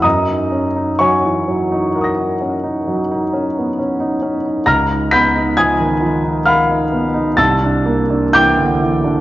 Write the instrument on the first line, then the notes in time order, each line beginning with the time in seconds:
grand piano
0.02 F#2 D#5 A#5 D#6
0.28 D#4
0.52 C#4
0.76 D#4
0.99 F#3 C#5 G#5 C#6
1.24 E3
1.48 F#3
1.72 D#4
1.94 A#4 F#5 C#6
2.01 D#6 A#6
2.17 D#4
2.41 C#4
2.63 D#4
2.87 F#3
3.11 D#4
3.34 C#4
3.58 B3
3.79 C#4
4.00 D#4
4.22 C#4
4.46 D#4
4.66 C#2 A#5 F6 A#6
4.89 D#4
5.11 B3 B5 G6 B6
5.36 D#4
5.57 F3 G#5 D#6 G#6
5.80 D#3
6.01 F3
6.23 D#4
6.45 A#4 F5 B5 F6
6.70 D#4
6.92 B3
7.14 D#4
7.37 C2 A5 E6 A6
7.64 D4
7.86 A#3
8.10 D4
8.33 E3 G5 D6 G6
8.59 D3
8.82 E3
9.04 D4